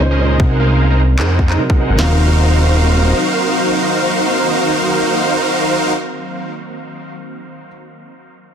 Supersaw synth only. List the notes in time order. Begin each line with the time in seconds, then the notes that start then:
0.11 C#4 G#4 A#4 C5 D#5
0.40 D#4 G#4 A#4 C5 F#5
0.60 D#4 G#4 A#4 C5 F5
0.90 D#4 G#4 A#4 C5 A#5
1.19 D#4 G#4 A#4 C5 F#5
1.50 D#4 G#4 A#4 C5 A#5
1.69 D#4 G#4 A#4 C5 F#5
1.98 D#4 F#4 A#4 C5 F5